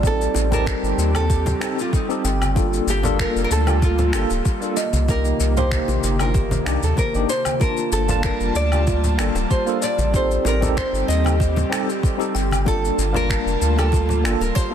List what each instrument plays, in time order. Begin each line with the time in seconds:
Already playing: analog synth bass A1
0.03 analog synth pad G3 C4 G4, tine electric piano C4 D#4 G4 A4, kalimba G4, kick, shaker
0.07 nylon-string guitar A4
0.21 shaker
0.34 analog synth bass A1, high bongo, shaker
0.51 tine electric piano C4 D#4 G4 A5, nylon-string guitar A#4, low conga, shaker
0.66 finger snap, kick, shaker
0.83 analog synth bass G1, shaker
0.97 analog synth bass D#2, high bongo, shaker
1.15 tine electric piano C4 D#4 G4 A4, nylon-string guitar A4, high conga, low woodblock, shaker
1.30 kalimba G4, kick, shaker
1.46 high bongo, high conga, low conga, shaker
1.61 tine electric piano C4 D#4 G4 A4, finger snap, low woodblock, shaker
1.79 nylon-string guitar F4, shaker
1.93 nylon-string guitar D#4, kalimba A4, kick, shaker
2.09 tine electric piano C4 D#4 G4 A4, high bongo, shaker
2.24 analog synth bass G1, kalimba G5, shaker
2.42 high conga, low woodblock, shaker
2.55 analog synth pad G3 A#3 F4 A4, tine electric piano A#3 D4 F4 A4, kalimba F4, kick, high bongo, shaker
2.73 shaker
2.87 analog synth bass G1, nylon-string guitar G4, shaker
3.03 tine electric piano A#3 D4 F4 A4, low conga, shaker
3.19 nylon-string guitar A#4, finger snap, kick, high bongo, shaker
3.35 analog synth bass F1, shaker
3.44 nylon-string guitar A#4
3.51 analog synth bass D2, nylon-string guitar A4, shaker
3.67 tine electric piano A#3 D4 F4 G4, high bongo, high conga, low woodblock, shaker
3.82 kalimba F4, nylon-string guitar F4, kick, shaker
3.98 low conga, shaker
4.13 analog synth bass G1, tine electric piano A#3 D4 F4 A4, nylon-string guitar G4, finger snap, low woodblock, shaker
4.29 analog synth bass D1, high bongo, shaker
4.45 kalimba G4, kick, shaker
4.61 tine electric piano A#3 D4 F4 A4, shaker
4.77 analog synth pad C3 D#3 A#3, kalimba D#5, high bongo, shaker
4.93 analog synth bass C2, high conga, shaker
5.08 tine electric piano A#3 D#4 G4, kalimba G4, nylon-string guitar A#4, kick, shaker
5.25 shaker
5.40 analog synth bass C2, high bongo, shaker
5.57 tine electric piano A#3 D#4 G4, nylon-string guitar C5, low conga, shaker
5.71 finger snap, kick, shaker
5.88 analog synth bass A#1, high bongo, shaker
6.03 analog synth bass G1, shaker
6.19 tine electric piano A#3 D4 D#4 F4, nylon-string guitar A#4, high conga, low woodblock, shaker
6.34 kalimba G4, kick, shaker
6.51 high bongo, high conga, low conga, shaker
6.65 analog synth bass C2, tine electric piano A#3 D4 D#4 G4, finger snap, low woodblock, shaker
6.83 analog synth bass D#2, nylon-string guitar A4, shaker
6.97 nylon-string guitar A#4, kalimba C5, kick, high bongo, shaker
7.14 analog synth bass G1, tine electric piano A#3 D4 D#4 G4, shaker
7.29 nylon-string guitar C5, shaker
7.45 high conga, low woodblock, shaker
7.60 analog synth pad G3 A#3 F4 A5, tine electric piano A#3 D4 F4 A5, kalimba F4, nylon-string guitar A#4, kick, shaker
7.77 high bongo, shaker
7.92 analog synth bass G1, nylon-string guitar A4, shaker
8.08 tine electric piano A#3 D4 F4 A5, low conga, shaker
8.23 nylon-string guitar A#4, finger snap, kick, high bongo, shaker
8.40 analog synth bass F1, shaker
8.55 analog synth bass D2, nylon-string guitar D5, shaker
8.71 tine electric piano A#3 D4 F4 G4, high conga, low woodblock, shaker
8.87 kalimba F4, kick, high bongo, shaker
9.04 low conga, shaker
9.18 analog synth bass G1, tine electric piano A#3 D4 F4 A4, finger snap, low woodblock, shaker
9.35 analog synth bass D1, high bongo, shaker
9.51 kalimba G4, nylon-string guitar C5, kick, shaker
9.66 tine electric piano A#3 D4 F4 A4, shaker
9.82 kalimba D5, nylon-string guitar D5, shaker
9.98 analog synth bass A1, high bongo, high conga, shaker
10.12 analog synth pad G3 C4 G4, tine electric piano C4 D#4 G4 A4, kalimba G4, nylon-string guitar C5, kick, shaker
10.31 shaker
10.45 analog synth bass A1, nylon-string guitar A#4, high bongo, shaker
10.61 tine electric piano C4 D#4 G4 A4, low conga, shaker
10.77 nylon-string guitar C5, finger snap, kick, shaker
10.93 analog synth bass G1, shaker
11.08 analog synth bass D#2, nylon-string guitar D#5, high bongo, shaker
11.25 tine electric piano C4 D#4 G4 A4, high conga, low woodblock, shaker
11.40 kalimba G4, kick, shaker
11.56 high bongo, high conga, low conga, shaker
11.70 tine electric piano C4 D#4 G4 A4, finger snap, low woodblock, shaker
11.89 shaker
12.03 kalimba A4, kick, shaker
12.18 tine electric piano C4 D#4 G4 A4, high bongo, shaker
12.35 analog synth bass G1, kalimba G5, shaker
12.51 high conga, low woodblock, shaker
12.65 analog synth pad G3 A#3 F4 A5, tine electric piano A#3 D4 F4 A4, kalimba F4, nylon-string guitar A4, kick, high bongo, shaker
12.85 shaker
12.98 analog synth bass G1, shaker
13.13 tine electric piano A#3 D4 F4 A5, nylon-string guitar A#4, low conga, shaker
13.30 finger snap, kick, high bongo, shaker
13.46 analog synth bass F1, shaker
13.61 analog synth bass D2, shaker
13.76 tine electric piano A#3 D4 F4 G4, nylon-string guitar A4, high bongo, high conga, low woodblock, shaker
13.92 kalimba F4, kick, shaker
14.09 low conga, shaker
14.24 analog synth bass G1, tine electric piano A#3 D4 F4 A4, finger snap, low woodblock, shaker
14.40 analog synth bass D1, nylon-string guitar A#4, high bongo, shaker
14.55 kalimba G4, nylon-string guitar C5, kick, shaker
14.71 tine electric piano A#3